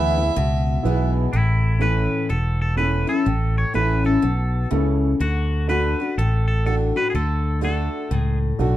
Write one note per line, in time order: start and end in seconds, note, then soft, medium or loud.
0.00 0.29 D2 medium
0.00 0.33 E2 medium
0.00 0.17 E3 medium
0.00 0.17 G#3 medium
0.00 0.18 B3 medium
0.00 0.17 E4 medium
0.00 0.26 E4 medium
0.00 0.26 G#4 medium
0.00 0.26 B4 medium
0.00 1.11 E5 medium
0.18 0.36 B3 soft
0.18 0.35 E4 medium
0.36 0.78 C#2 medium
0.36 1.30 B2 loud
0.83 1.26 B1 medium
0.83 1.32 E3 medium
0.83 1.32 G#3 medium
0.83 1.32 B3 medium
0.83 1.22 E4 medium
0.83 1.32 E4 medium
0.83 1.23 G#4 medium
0.83 1.23 B4 medium
1.33 2.07 A1 medium
1.33 2.27 A2 medium
1.33 1.83 E4 medium
1.79 2.28 E3 medium
1.79 2.28 A3 medium
1.79 2.19 C#4 medium
1.79 2.29 C#4 medium
1.79 2.19 E4 medium
1.79 2.29 E4 medium
1.79 2.20 A4 medium
1.79 2.27 B4 medium
2.30 3.04 E1 medium
2.30 3.23 E2 medium
2.30 2.60 A4 medium
2.62 2.77 A4 medium
2.77 3.07 E3 medium
2.77 3.08 A3 soft
2.77 3.16 C#4 medium
2.77 3.08 C#4 medium
2.77 3.16 E4 medium
2.77 3.06 E4 medium
2.77 3.17 A4 medium
2.77 3.09 B4 medium
3.07 3.26 C#4 soft
3.07 3.25 E4 medium
3.07 3.58 A4 medium
3.26 3.63 A1 medium
3.26 4.20 A2 medium
3.58 3.75 C#5 medium
3.73 4.16 A1 medium
3.73 4.04 E3 soft
3.73 4.04 A3 medium
3.73 4.13 C#4 medium
3.73 4.04 C#4 medium
3.73 4.13 E4 medium
3.73 4.03 E4 medium
3.73 4.14 A4 medium
3.73 4.06 B4 medium
4.04 4.23 C#4 soft
4.04 4.22 E4 medium
4.04 4.99 A4 medium
4.22 4.65 B1 medium
4.22 4.70 B2 medium
4.71 5.13 C#2 medium
4.71 5.18 C#3 medium
4.71 5.10 C#4 medium
4.71 5.10 E4 medium
4.71 5.11 A4 medium
5.20 5.94 D2 medium
5.20 5.68 D3 medium
5.20 5.69 F#4 medium
5.68 5.98 D3 medium
5.68 5.99 A3 medium
5.68 6.07 D4 medium
5.68 5.99 D4 medium
5.68 6.07 F#4 medium
5.68 5.99 F#4 medium
5.68 6.07 A4 medium
5.68 6.14 B4 medium
6.00 6.17 D4 soft
6.00 6.17 F#4 medium
6.18 6.91 A1 medium
6.18 7.11 A2 medium
6.18 6.47 A4 medium
6.48 6.65 A4 medium
6.65 6.95 D3 soft
6.65 6.95 A3 medium
6.65 7.04 D4 medium
6.65 6.96 D4 medium
6.65 7.04 F#4 medium
6.65 6.95 F#4 medium
6.65 6.75 A4 medium
6.65 7.05 A4 medium
6.96 7.14 D4 soft
6.96 7.13 F#4 medium
6.96 7.10 B4 loud
7.10 7.15 G#4 medium
7.14 7.88 D2 medium
7.14 7.60 D3 medium
7.14 7.60 A4 medium
7.61 8.08 D3 medium
7.61 8.09 A3 medium
7.61 8.00 D4 medium
7.61 8.09 D4 medium
7.61 8.00 F#4 medium
7.61 8.10 F#4 medium
7.61 8.01 A4 medium
7.61 8.15 A4 medium
8.11 8.52 C#2 medium
8.11 8.77 A2 medium
8.15 8.38 G#4 medium
8.59 8.77 B1 medium
8.59 8.77 D3 soft
8.59 8.77 A3 medium
8.59 8.77 D4 medium
8.59 8.77 F#4 medium
8.59 8.77 A4 medium